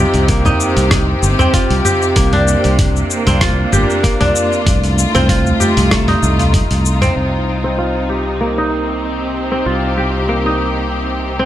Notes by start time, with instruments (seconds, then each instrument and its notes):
Already playing: string section C3 C4 D#4 G4, kora A#3 C4 D#4 F4 G4
0.14 fretless electric bass C2, open hi-hat, shaker
0.28 kora A#3, kick, open hi-hat, shaker
0.45 kora D#4, mid tom, udu, shaker
0.60 shaker
0.77 fretless electric bass C2, open hi-hat, shaker
0.91 kick, cross-stick, mid tom, open hi-hat, shaker
1.23 fretless electric bass G1, shaker
1.39 kora C4, mid tom, udu, shaker
1.54 kora F4, kick, open hi-hat, shaker
1.70 fretless electric bass C2, open hi-hat
1.85 kora G4, mid tom, shaker
2.02 shaker
2.16 fretless electric bass C2, kora A#3, kick, open hi-hat, shaker
2.33 kora D4, mid tom, open hi-hat
2.40 string section A#3
2.48 shaker
2.64 fretless electric bass C2, open hi-hat, shaker
2.79 kick, mid tom, open hi-hat, shaker
2.96 shaker
3.11 shaker
3.23 fretless electric bass C2, kora C4, string section D4, mid tom, open hi-hat, shaker
3.31 string section F4
3.41 kora F4, kick, cross-stick, open hi-hat, udu, shaker
3.72 fretless electric bass G1, kora G4, mid tom, shaker
3.90 shaker
4.03 kora A#3, kick, open hi-hat, shaker
4.21 fretless electric bass C2, kora D4, mid tom, open hi-hat
4.36 shaker
4.53 shaker
4.66 fretless electric bass C2, string section A3, kick, mid tom, open hi-hat, shaker
4.84 open hi-hat, shaker
4.89 string section D#4
4.99 shaker
5.15 fretless electric bass C2, kora C4, mid tom, open hi-hat, shaker
5.29 kora F4, kick, open hi-hat, shaker
5.46 udu, shaker
5.60 kora G4, mid tom, shaker
5.77 fretless electric bass C2, open hi-hat, shaker
5.91 kora A3, kick, cross-stick, open hi-hat, shaker
6.08 kora D#4, mid tom, open hi-hat
6.23 fretless electric bass C2, shaker
6.39 open hi-hat, udu, shaker
6.54 kick, mid tom, open hi-hat, shaker
6.71 fretless electric bass C2, open hi-hat, shaker
6.86 shaker
7.02 kora C4, mid tom, open hi-hat, udu, shaker
7.16 fretless electric bass C2, string section C3
7.55 string section C4
7.64 kora C4
7.78 kora F4
8.09 kora G4
8.41 kora A#3
8.58 kora D#4
8.84 string section G4
9.52 kora C4
9.66 fretless electric bass C2, kora F4
9.97 kora G4
10.29 kora A#3
10.46 kora D#4
11.39 kora C4